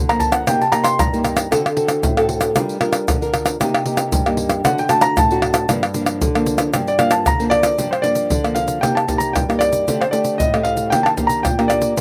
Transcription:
Already playing: nylon-string guitar D3
0.09 nylon-string guitar F3 A#3 D4, grand piano A#5, pandeiro, tamborim, shaker
0.20 grand piano A5, pandeiro, shaker, surdo
0.32 grand piano F#5, pandeiro, tamborim, shaker
0.47 nylon-string guitar C3 A#3 D#4 G4, grand piano G5, pandeiro, tamborim, shaker, surdo
0.61 grand piano A5, pandeiro, shaker
0.72 nylon-string guitar A#3 D#4 G4, grand piano A#5, pandeiro, tamborim, shaker
0.84 grand piano C6, pandeiro, tamborim, shaker
0.99 nylon-string guitar G2, grand piano A#5, pandeiro, tamborim, shaker, surdo
1.13 nylon-string guitar A#3 D#4 G4, pandeiro, shaker
1.24 pandeiro, tamborim, shaker
1.37 pandeiro, tamborim, shaker
1.51 nylon-string guitar D3 C4 F#4 A4, pandeiro, tamborim, shaker, surdo
1.66 pandeiro, tamborim, shaker
1.76 nylon-string guitar C4 F#4 A4, pandeiro
1.88 pandeiro, tamborim, shaker
2.03 nylon-string guitar A2, pandeiro, shaker, surdo
2.17 nylon-string guitar C4 F#4 A4, pandeiro, tamborim, shaker
2.29 pandeiro
2.41 pandeiro, tamborim, shaker
2.55 nylon-string guitar G3 D4 F4 A#4, pandeiro, tamborim, shaker, surdo
2.69 pandeiro, shaker
2.81 nylon-string guitar D4 F4 A#4, pandeiro, tamborim
2.93 pandeiro, tamborim, shaker
3.08 nylon-string guitar D3, pandeiro, tamborim, shaker, surdo
3.21 nylon-string guitar D4 F4 A#4, pandeiro, shaker
3.34 pandeiro, tamborim, shaker
3.46 pandeiro, tamborim, shaker
3.60 nylon-string guitar C3 A#3 D#4 G4, pandeiro, tamborim, shaker, surdo
3.74 pandeiro, tamborim, shaker
3.85 nylon-string guitar A#3 D#4 G4, pandeiro
3.97 pandeiro, tamborim, shaker
4.12 nylon-string guitar G2, pandeiro, shaker, surdo
4.26 nylon-string guitar A#3 D#4 G4, pandeiro, tamborim, shaker
4.37 pandeiro
4.49 pandeiro, tamborim, shaker
4.64 nylon-string guitar D3 A3 D4 F#4, grand piano F#5, pandeiro, tamborim, shaker, surdo
4.78 grand piano G5, pandeiro, shaker
4.89 nylon-string guitar A3 D4 F#4, grand piano A5, pandeiro, tamborim, shaker
5.01 grand piano A#5, pandeiro, tamborim, shaker
5.17 nylon-string guitar A2, grand piano A5, pandeiro, tamborim, shaker, surdo
5.31 nylon-string guitar A3 D4 F#4, pandeiro, shaker
5.42 pandeiro, tamborim
5.54 pandeiro, tamborim, shaker
5.69 nylon-string guitar G2 F3 A#3 D4, pandeiro, tamborim, shaker, surdo
5.83 pandeiro, tamborim, shaker
5.94 nylon-string guitar F3 A#3 D4, pandeiro, shaker
6.06 pandeiro, tamborim, shaker
6.21 nylon-string guitar D3, pandeiro, shaker, surdo
6.35 nylon-string guitar F3 A#3 D4, pandeiro, tamborim, shaker
6.46 pandeiro, shaker
6.58 pandeiro, tamborim, shaker
6.73 nylon-string guitar G2 F3 A#3 D4, pandeiro, tamborim, shaker, surdo
6.87 grand piano D5, pandeiro, shaker
6.99 nylon-string guitar F3 A#3 D4, grand piano F5, pandeiro, tamborim, shaker
7.11 grand piano A5, pandeiro, tamborim, shaker
7.25 nylon-string guitar D3, grand piano A#5, pandeiro, tamborim, shaker, surdo
7.39 nylon-string guitar F3 A#3 D4, pandeiro, shaker
7.50 grand piano D5, pandeiro, tamborim
7.63 pandeiro, tamborim, shaker
7.78 nylon-string guitar G2 F3 A#3 D4, pandeiro, shaker, surdo
7.91 grand piano C5, pandeiro, tamborim, shaker
8.02 nylon-string guitar F3 A#3 D4, grand piano D5, pandeiro, shaker
8.15 pandeiro, shaker
8.30 nylon-string guitar D3, pandeiro, shaker, surdo
8.44 nylon-string guitar F3 A#3 D4, pandeiro, tamborim, shaker
8.55 grand piano F5, pandeiro, shaker
8.68 pandeiro, shaker
8.81 nylon-string guitar C3 A#3 D#4 G4, grand piano G5, pandeiro, tamborim, shaker, surdo
8.95 grand piano A5, pandeiro, tamborim, shaker
9.08 nylon-string guitar A#3 D#4 G4, pandeiro, shaker, surdo
9.18 grand piano A#5, pandeiro, shaker
9.33 nylon-string guitar G2, grand piano G5, pandeiro, tamborim, shaker, surdo
9.49 nylon-string guitar A#3 D#4 G4, pandeiro, tamborim, shaker
9.59 grand piano D5, pandeiro, tamborim, shaker
9.73 pandeiro, shaker
9.87 nylon-string guitar D3 A3 C4 G4, pandeiro, shaker, surdo
10.01 grand piano C5, pandeiro, tamborim, shaker
10.11 nylon-string guitar A3 C4 G4, grand piano D5, pandeiro, shaker
10.24 pandeiro, shaker
10.38 nylon-string guitar A2, grand piano D#5, pandeiro, shaker, surdo
10.54 nylon-string guitar A3 C4 G4, pandeiro, tamborim, shaker
10.63 grand piano F5, pandeiro
10.77 pandeiro, shaker
10.90 nylon-string guitar D#3 A#3 D4 G4, grand piano G5, pandeiro, tamborim, shaker, surdo
11.03 grand piano A5, pandeiro, tamborim, shaker
11.17 nylon-string guitar A#3 D4 G4, pandeiro, shaker, surdo
11.27 grand piano A#5, pandeiro, shaker
11.43 nylon-string guitar A#2, grand piano G5, pandeiro, tamborim, shaker, surdo
11.59 nylon-string guitar A#3 D4 G4, pandeiro, tamborim, shaker
11.68 grand piano D5, pandeiro, tamborim, shaker
11.82 pandeiro, shaker
11.97 nylon-string guitar A#2 A#3 C4, pandeiro, shaker, surdo

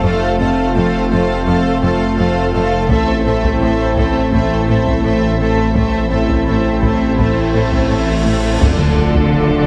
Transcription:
0.04 detuned saw bass F1, cello section F2, viola section A3 A4, analog synth pad A3 C4 F4 C5, violin section C5 F5
0.40 cello section F2, viola section A3 A4, violin section C5 F5
0.76 cello section F2, viola section A3 A4, violin section C5 F5
1.11 cello section F2, viola section A3 A4, violin section C5 F5
1.46 cello section F2, viola section A3 A4, violin section C5 F5
1.83 cello section F2, viola section A3 A4, violin section C5 F5
2.18 cello section F2, viola section A3 A4, violin section C5 F5
2.54 cello section F2, viola section A3 A4, violin section C5 F5
2.89 detuned saw bass A1, cello section A2, analog synth pad A3 C4 E4 C5, viola section A3 A4, violin section C5 E5, taiko
3.26 cello section A2, viola section A3 A4, violin section C5 E5
3.44 taiko
3.61 cello section A2, viola section A3 A4, violin section C5 E5
3.96 cello section A2, viola section A3 A4, violin section C5 E5, taiko
4.32 cello section A2, viola section A3 A4, violin section C5 E5, taiko
4.68 cello section A2, viola section A3 A4, violin section C5 E5
4.87 taiko
5.03 cello section A2, viola section A3 A4, violin section C5 E5
5.39 cello section A2, viola section A3 A4, violin section C5 E5
5.75 detuned saw bass A1, cello section A2, viola section A3 A4, analog synth pad A3 C4 E4 C5, violin section C5 E5, taiko, cymbal swell
6.10 cello section A2, viola section A3 A4, violin section C5 E5
6.29 taiko
6.47 cello section A2, viola section A3 A4, violin section C5 E5
6.81 cello section A2, viola section A3 A4, violin section C5 E5, taiko
7.17 cello section A2, viola section A3 A4, violin section C5 E5, taiko
7.54 cello section A2, viola section A3 A4, violin section C5 E5
7.72 taiko
7.89 cello section A2, viola section A3 A4, violin section C5 E5
8.25 cello section A2, viola section A3 A4, violin section C5 E5
8.59 detuned saw bass D1, double bass section D2, analog synth bass D2, cello section D3, trombone section F3 D4, analog synth pad A3 D4 F4 A4, viola section D4, violin section A4, taiko, sub drop
8.64 violin section F4
8.78 analog synth bass D3
8.97 analog synth bass D2
9.15 analog synth bass D2, taiko
9.33 analog synth bass D3
9.51 analog synth bass D3

